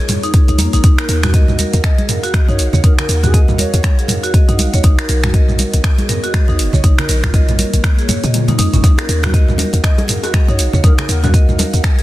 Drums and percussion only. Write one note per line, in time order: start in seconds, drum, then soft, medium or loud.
0.09 mid tom medium
0.09 open hi-hat medium
0.09 muted conga soft
0.09 high conga loud
0.09 shaker medium
0.23 closed hi-hat soft
0.23 shaker soft
0.34 kick loud
0.34 closed hi-hat medium
0.34 shaker medium
0.48 closed hi-hat soft
0.48 muted conga medium
0.48 shaker soft
0.58 open hi-hat medium
0.58 high conga loud
0.58 shaker medium
0.73 closed hi-hat soft
0.73 shaker soft
0.84 kick loud
0.84 closed hi-hat medium
0.84 muted conga soft
0.84 shaker medium
0.98 finger snap medium
0.98 closed hi-hat soft
0.98 shaker soft
1.09 open hi-hat medium
1.09 shaker medium
1.23 finger snap medium
1.23 closed hi-hat soft
1.23 mid tom loud
1.23 muted conga soft
1.23 high conga medium
1.23 shaker soft
1.34 kick loud
1.34 closed hi-hat medium
1.34 shaker medium
1.48 mid tom medium
1.48 high conga medium
1.48 shaker soft
1.59 open hi-hat medium
1.59 high conga medium
1.59 shaker medium
1.73 closed hi-hat soft
1.73 muted conga soft
1.73 shaker soft
1.84 finger snap medium
1.84 kick loud
1.84 closed hi-hat medium
1.84 shaker medium
1.98 closed hi-hat soft
1.98 high conga medium
1.98 shaker soft
2.09 mid tom medium
2.09 open hi-hat medium
2.09 muted conga soft
2.09 shaker medium
2.24 closed hi-hat soft
2.24 shaker soft
2.34 finger snap medium
2.34 kick loud
2.34 closed hi-hat medium
2.34 high conga medium
2.34 shaker medium
2.48 muted conga medium
2.48 shaker soft
2.59 open hi-hat medium
2.59 shaker medium
2.73 low conga medium
2.73 shaker soft
2.84 kick loud
2.84 closed hi-hat medium
2.84 muted conga medium
2.84 shaker soft
2.99 finger snap medium
2.99 closed hi-hat soft
2.99 low conga medium
2.99 shaker soft
3.09 open hi-hat medium
3.09 shaker medium
3.23 closed hi-hat soft
3.23 mid tom loud
3.23 muted conga soft
3.23 high conga medium
3.23 shaker soft
3.34 kick loud
3.34 closed hi-hat medium
3.34 shaker soft
3.48 mid tom medium
3.48 high conga medium
3.48 shaker soft
3.58 open hi-hat medium
3.58 high conga loud
3.58 shaker medium
3.74 closed hi-hat soft
3.74 muted conga medium
3.74 shaker soft
3.83 finger snap medium
3.83 kick loud
3.83 closed hi-hat medium
3.83 high conga medium
3.83 shaker soft
3.99 closed hi-hat soft
3.99 shaker soft
4.08 mid tom medium
4.08 open hi-hat medium
4.08 muted conga soft
4.08 high conga loud
4.08 shaker medium
4.24 closed hi-hat soft
4.24 shaker soft
4.34 kick loud
4.34 closed hi-hat medium
4.34 shaker soft
4.49 closed hi-hat soft
4.49 muted conga medium
4.49 shaker soft
4.59 open hi-hat medium
4.59 high conga loud
4.59 shaker medium
4.74 closed hi-hat soft
4.74 shaker soft
4.83 kick loud
4.83 closed hi-hat medium
4.83 muted conga soft
4.83 shaker soft
4.99 finger snap medium
4.99 closed hi-hat soft
4.99 shaker soft
5.09 open hi-hat medium
5.09 shaker medium
5.24 finger snap medium
5.24 closed hi-hat soft
5.24 mid tom loud
5.24 muted conga soft
5.24 high conga medium
5.24 shaker soft
5.34 kick loud
5.34 closed hi-hat medium
5.34 shaker soft
5.48 mid tom medium
5.48 high conga medium
5.48 shaker soft
5.59 open hi-hat medium
5.59 high conga loud
5.59 shaker medium
5.73 closed hi-hat soft
5.73 muted conga medium
5.73 shaker soft
5.84 finger snap medium
5.84 kick loud
5.84 closed hi-hat medium
5.98 closed hi-hat soft
5.98 high conga medium
5.98 shaker soft
6.09 mid tom medium
6.09 open hi-hat medium
6.09 muted conga soft
6.09 shaker medium
6.24 closed hi-hat soft
6.24 shaker soft
6.34 finger snap medium
6.34 kick loud
6.34 closed hi-hat medium
6.34 high conga medium
6.34 shaker soft
6.48 muted conga soft
6.48 shaker soft
6.59 open hi-hat loud
6.59 shaker medium
6.73 low conga medium
6.73 shaker soft
6.84 kick loud
6.84 closed hi-hat medium
6.84 muted conga medium
6.84 shaker soft
6.98 finger snap medium
6.98 closed hi-hat soft
6.98 low conga medium
6.98 shaker soft
7.09 open hi-hat loud
7.09 shaker medium
7.23 finger snap medium
7.23 kick medium
7.23 closed hi-hat soft
7.23 mid tom medium
7.23 muted conga soft
7.23 high conga medium
7.34 kick loud
7.34 closed hi-hat medium
7.34 shaker soft
7.49 closed hi-hat soft
7.49 mid tom medium
7.49 high conga medium
7.49 shaker soft
7.59 open hi-hat medium
7.59 high conga loud
7.59 shaker medium
7.73 closed hi-hat soft
7.73 muted conga medium
7.73 shaker soft
7.84 finger snap medium
7.84 kick loud
7.84 closed hi-hat medium
7.84 high conga medium
7.84 shaker medium
7.99 closed hi-hat soft
7.99 shaker soft
8.09 mid tom medium
8.09 open hi-hat medium
8.09 muted conga soft
8.09 high conga loud
8.09 shaker medium
8.24 closed hi-hat soft
8.24 low conga medium
8.24 shaker soft
8.34 closed hi-hat medium
8.34 high tom medium
8.34 shaker medium
8.48 closed hi-hat soft
8.48 high tom medium
8.48 muted conga medium
8.48 low conga medium
8.48 shaker soft
8.59 open hi-hat loud
8.59 high conga loud
8.59 shaker medium
8.74 closed hi-hat soft
8.74 mid tom medium
8.74 shaker soft
8.84 kick loud
8.84 closed hi-hat medium
8.84 low bongo medium
8.84 muted conga soft
8.84 shaker medium
8.98 finger snap loud
8.98 closed hi-hat soft
8.98 high bongo medium
8.98 shaker soft
9.09 open hi-hat loud
9.09 shaker loud
9.23 finger snap medium
9.23 closed hi-hat soft
9.23 mid tom medium
9.23 low bongo medium
9.23 muted conga soft
9.23 high conga medium
9.23 shaker soft
9.34 kick loud
9.34 closed hi-hat medium
9.34 shaker medium
9.48 mid tom medium
9.48 high conga medium
9.48 shaker soft
9.58 open hi-hat loud
9.58 low bongo medium
9.58 high conga loud
9.58 shaker medium
9.73 closed hi-hat soft
9.73 muted conga medium
9.73 shaker soft
9.84 finger snap loud
9.84 kick loud
9.84 closed hi-hat medium
9.84 shaker medium
9.98 closed hi-hat soft
9.98 high bongo medium
9.98 high conga loud
9.98 shaker soft
10.08 mid tom medium
10.08 open hi-hat loud
10.08 muted conga soft
10.08 shaker medium
10.23 closed hi-hat soft
10.23 high bongo medium
10.23 shaker soft
10.34 finger snap medium
10.34 kick loud
10.34 closed hi-hat medium
10.34 high conga medium
10.34 shaker medium
10.48 muted conga medium
10.48 shaker soft
10.59 open hi-hat loud
10.59 shaker loud
10.73 low conga loud
10.73 shaker soft
10.84 kick loud
10.84 closed hi-hat medium
10.84 low bongo medium
10.84 muted conga medium
10.84 shaker medium
10.98 finger snap loud
10.98 closed hi-hat soft
10.98 high bongo medium
10.98 low conga medium
10.98 shaker soft
11.09 open hi-hat medium
11.09 shaker loud
11.23 closed hi-hat soft
11.23 mid tom medium
11.23 low bongo loud
11.23 muted conga soft
11.23 high conga medium
11.23 shaker soft
11.34 kick loud
11.34 closed hi-hat medium
11.34 shaker medium
11.49 mid tom medium
11.49 high conga medium
11.49 shaker soft
11.59 open hi-hat medium
11.59 low bongo medium
11.59 high conga loud
11.59 shaker medium
11.73 closed hi-hat soft
11.73 muted conga medium
11.73 shaker soft
11.83 finger snap loud
11.83 kick loud
11.83 closed hi-hat medium
11.83 high conga medium
11.83 shaker medium
11.99 closed hi-hat soft
11.99 shaker soft